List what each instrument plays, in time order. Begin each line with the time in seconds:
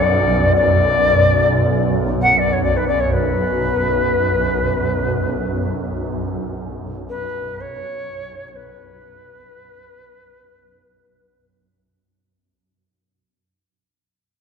Already playing: synth drone B1 F#2, native american-style wooden flute D5
0.56 native american-style wooden flute D5
2.22 native american-style wooden flute F#5
2.39 native american-style wooden flute D5
2.53 native american-style wooden flute C#5
2.64 native american-style wooden flute D5
2.77 native american-style wooden flute B4
2.88 native american-style wooden flute D5
3.00 native american-style wooden flute C#5
3.13 native american-style wooden flute B4
7.10 native american-style wooden flute B4
7.61 native american-style wooden flute C#5
8.48 native american-style wooden flute C#5
8.56 native american-style wooden flute B4